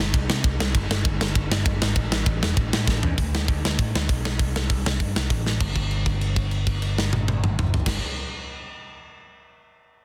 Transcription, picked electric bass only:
0.00 0.12 G1 medium
0.14 0.28 C2 medium
0.29 0.43 C3 loud
0.44 0.58 C2 medium
0.59 0.73 C2 medium
0.75 0.88 G1 loud
0.89 1.03 G1 loud
1.05 1.18 G1 loud
1.19 1.33 G1 medium
1.35 1.49 G1 loud
1.50 1.64 G1 medium
1.66 1.80 G1 medium
1.82 1.95 G#1 loud
1.96 2.10 A1 medium
2.12 2.26 A1 loud
2.26 2.40 A1 loud
2.44 2.57 E1 medium
2.57 2.71 A1 loud
2.73 2.86 A2 medium
2.87 3.01 A1 medium
3.04 3.17 E2 loud
3.19 3.45 D2 medium
3.49 3.62 D2 loud
3.64 3.77 D2 medium
3.79 3.92 A2 medium
3.95 4.07 D2 medium
4.09 4.40 B1 medium
4.40 4.66 C2 medium
4.70 4.83 C2 loud
4.85 4.98 C2 medium
5.01 5.14 G2 medium
5.16 5.29 C2 medium
5.30 5.57 A1 medium
5.61 7.78 G1 loud
7.86 7.98 G1 medium

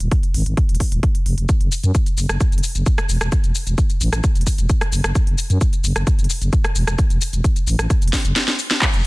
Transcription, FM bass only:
0.00 0.08 D#1 medium
0.34 0.43 G#1 medium
0.46 0.54 G#1 medium
0.69 0.77 D#1 medium
0.92 1.00 D#1 medium
1.26 1.34 F1 medium
1.38 1.46 F1 medium
1.61 1.69 F#1 medium
1.84 1.92 F#2 medium
2.18 2.26 F#1 medium
2.29 2.37 F#1 medium
2.52 2.60 F#1 medium
2.75 2.83 F#1 medium
3.09 3.18 E1 medium
3.21 3.29 E1 medium
3.44 3.52 E1 medium
3.67 3.75 E1 medium
4.01 4.09 A1 loud
4.13 4.21 A1 medium
4.36 4.43 E1 medium
4.58 4.66 E1 medium
4.92 5.01 F#1 medium
5.04 5.12 F#1 medium
5.27 5.35 F#1 medium
5.50 5.58 F#2 medium
5.84 5.92 F#1 loud
5.96 6.04 F#1 medium
6.19 6.27 F#1 medium
6.42 6.50 F#1 medium
6.76 6.84 E1 medium
6.87 6.95 E1 medium
7.10 7.18 E1 medium
7.33 7.41 E1 medium
7.67 7.76 A1 medium
7.79 7.87 A1 medium
8.02 8.10 E1 medium
8.25 8.33 F#1 medium
8.94 9.01 F1 medium

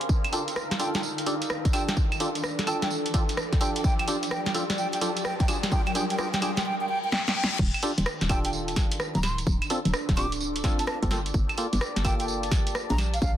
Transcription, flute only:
0.79 0.89 G5 medium
0.95 1.00 G5 medium
1.73 1.83 G5 medium
1.88 1.94 G5 medium
2.67 2.77 G5 medium
2.82 2.88 G5 medium
3.61 3.70 G5 medium
3.76 3.81 G5 medium
3.84 3.94 G5 medium
4.00 4.05 G5 medium
4.31 4.41 G5 medium
4.46 4.52 G5 medium
4.78 4.88 G5 medium
4.93 4.98 G5 medium
5.25 5.35 G5 medium
5.40 5.45 G5 medium
5.72 5.81 G5 medium
5.87 5.92 G5 medium
5.95 6.05 G5 medium
6.10 6.16 G5 medium
6.19 6.28 G5 medium
6.34 6.39 G5 medium
6.42 6.52 G5 medium
6.57 6.62 G5 medium
6.65 6.75 G5 medium
6.81 6.86 G5 medium
6.89 6.99 G5 medium
7.04 7.09 G5 medium
7.12 7.22 G5 loud
7.27 7.33 G5 medium
7.36 7.45 G5 loud
7.51 7.56 G5 medium
8.30 8.39 G5 medium
8.45 8.50 G5 medium
9.15 9.22 A#5 medium
9.23 9.38 C6 medium
10.17 10.32 D6 loud
10.79 10.84 A5 medium
10.87 10.97 A5 medium
12.05 12.14 G5 medium
12.20 12.25 G5 medium
12.90 12.97 A#5 medium
13.14 13.20 F5 medium
13.22 13.31 F5 medium

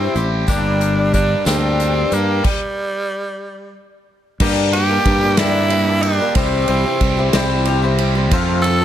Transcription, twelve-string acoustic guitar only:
0.00 0.16 C3 medium
0.00 0.48 G3 medium
0.00 0.16 C4 medium
0.00 0.15 E4 medium
0.00 0.14 G4 medium
0.15 0.49 C4 soft
0.15 0.48 E4 medium
0.15 0.48 G4 medium
0.48 1.13 G2 medium
0.48 1.14 D3 medium
0.48 1.12 G3 medium
0.48 1.12 A#3 medium
0.48 1.13 D4 medium
0.48 1.14 G4 medium
1.13 1.45 G3 medium
1.13 1.45 A#3 medium
1.13 1.45 D4 medium
1.13 1.44 G4 medium
1.45 2.12 G2 medium
1.45 2.12 D3 medium
1.45 2.12 G3 medium
1.45 2.11 A#3 medium
1.45 2.11 D4 medium
1.45 2.09 G4 medium
2.10 2.45 G3 soft
2.10 2.45 A#3 soft
2.10 2.44 D4 medium
2.10 2.44 G4 medium
4.40 4.73 G2 medium
4.40 4.73 D3 medium
4.40 4.72 G3 loud
4.40 4.72 A#3 loud
4.40 4.73 D4 loud
4.40 4.74 G4 loud
4.73 4.89 G3 medium
4.73 4.89 A#3 medium
4.73 4.89 D4 medium
4.73 4.88 G4 medium
4.89 5.22 G3 soft
4.89 5.21 A#3 medium
4.89 5.21 D4 soft
4.89 5.20 G4 medium
5.21 5.39 G3 medium
5.21 5.39 A#3 medium
5.21 5.38 D4 medium
5.21 5.38 G4 medium
5.39 5.71 G2 medium
5.39 5.72 D3 medium
5.39 5.70 G3 medium
5.39 5.70 A#3 medium
5.39 5.71 D4 loud
5.39 5.72 G4 medium
5.71 5.87 G3 medium
5.71 5.87 A#3 medium
5.71 5.86 D4 medium
5.71 5.85 G4 medium
5.86 6.20 G3 soft
5.86 6.20 A#3 medium
5.86 6.19 D4 medium
5.86 6.17 G4 medium
6.18 6.34 G3 soft
6.18 6.36 A#3 soft
6.18 6.36 D4 soft
6.18 6.36 G4 soft
6.35 6.68 C3 medium
6.35 6.66 G3 medium
6.35 6.67 C4 medium
6.35 6.68 E4 medium
6.35 6.69 G4 medium
6.67 6.85 G3 medium
6.67 6.85 C4 medium
6.67 6.85 E4 medium
6.67 6.82 G4 medium
6.84 7.19 C4 soft
6.84 7.17 E4 medium
6.84 7.16 G4 medium
7.17 7.33 C4 medium
7.17 7.34 E4 medium
7.17 7.34 G4 medium
7.33 7.66 C3 loud
7.33 7.65 G3 loud
7.33 7.66 C4 loud
7.33 7.66 E4 loud
7.33 7.67 G4 loud
7.66 7.83 G3 medium
7.66 7.83 C4 medium
7.66 7.82 E4 medium
7.66 7.81 G4 medium
7.82 8.16 C4 medium
7.82 8.15 E4 medium
7.82 8.14 G4 medium
8.15 8.31 C4 medium
8.15 8.32 E4 medium
8.15 8.32 G4 medium
8.31 8.63 F3 loud
8.31 8.64 C4 loud
8.31 8.65 F4 loud
8.31 8.65 A4 loud
8.64 8.80 F3 medium
8.64 8.81 F4 medium
8.64 8.80 A4 medium
8.81 8.85 A4 medium

